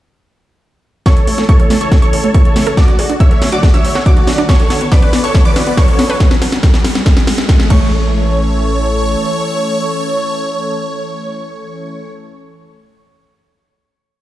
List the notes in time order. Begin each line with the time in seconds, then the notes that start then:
1.06 A3 A4 C#5 C#6, kick, snare, closed hi-hat, riser
1.17 A1, closed hi-hat
1.27 A1 C#3 E3 A3 E4, open hi-hat
1.38 E1 A3, snare, closed hi-hat
1.49 C#3 E3 A3 E4 A4 C#5 C#6, kick, closed hi-hat
1.60 A1 A4, closed hi-hat
1.70 A1 C#3 E3 A3 E4, snare, open hi-hat
1.81 A1 C#3 E3 A3 E4 A4 C#5 C#6, closed hi-hat
1.92 E3, kick, snare, closed hi-hat
2.02 A1 C#3 E3 A3 E4 A4 C#5 C#6, closed hi-hat
2.13 A1 C#4, open hi-hat
2.24 A1 A3, closed hi-hat
2.34 C#3 E3 A3 E4 A4 C#5 C#6, kick, closed hi-hat
2.45 A1 C#3 E3 A3 E4, closed hi-hat
2.56 A1 A3, snare, open hi-hat
2.67 A1 C#3 E3 A3 E4 A4, closed hi-hat
2.77 A3 F#4 D5 D6, kick, snare, closed hi-hat
2.88 D2 D4, closed hi-hat
2.99 D2 D3 F#3 A3 F#4 G#4, open hi-hat
3.10 A1 D4, closed hi-hat
3.20 D3 F#3 A3 F#4 C#5 E5 E6, kick, closed hi-hat
3.31 D2 A4, closed hi-hat
3.42 D2 D3 F#3 A3 D4 F#4, snare, open hi-hat
3.52 D2 D3 F#3 A3 D4 F#4 D5 D6, closed hi-hat
3.63 G#4, kick, snare, closed hi-hat
3.74 D2 D3 F#3 A3 D4 F#4 C#5 E5 E6, closed hi-hat
3.84 D2, open hi-hat
3.95 D2 F#4, snare, closed hi-hat
4.06 D3 F#3 A3 D4 F#4 D5 D6, kick, closed hi-hat
4.17 D2 D3 F#3 A3 F#4 A4, closed hi-hat
4.27 D2 D4, snare, open hi-hat
4.38 D2 D3 F#3 A3 D4 F#4, closed hi-hat
4.49 B3 A4 C#5 C#6, kick, snare, closed hi-hat
4.60 B1, closed hi-hat
4.70 B1 D3 B3 C#4 F#4, snare, open hi-hat
4.81 A1 B3, closed hi-hat
4.92 D3 F#3 B3 C#4 F#4 B4 D5 D6, kick, snare, closed hi-hat
5.02 B1 B4, closed hi-hat
5.13 B1 D3 B3 C#4 F#4, snare, open hi-hat
5.24 B1 D3 B3 C#4 F#4 A4 C#5 C#6, closed hi-hat
5.35 F#3, kick, snare, closed hi-hat
5.45 B1 D3 B3 C#4 F#4 B4 D5 D6, closed hi-hat
5.56 B1 E4, snare, open hi-hat
5.67 B1 B3, closed hi-hat
5.77 D3 B3 C#4 F#4 A4 B4 C#5 C#6, kick, snare, closed hi-hat
5.88 B1 D3 B3 C#4 F#4, closed hi-hat
5.99 B1 B3, snare, open hi-hat
6.10 B1 D3 B3 C#4 F#4 B4, closed hi-hat
6.20 kick, snare, closed hi-hat
6.31 snare, closed hi-hat
6.42 snare, open hi-hat
6.52 snare, closed hi-hat
6.63 kick, snare, closed hi-hat
6.74 snare, closed hi-hat
6.85 snare, open hi-hat
6.95 snare, closed hi-hat
7.06 kick, snare, closed hi-hat
7.17 snare, closed hi-hat
7.27 snare, open hi-hat
7.38 snare, closed hi-hat
7.49 kick, snare, closed hi-hat
7.60 snare, closed hi-hat
7.70 A1 E3 A3 C#4 A4 C#5 C#6, kick, crash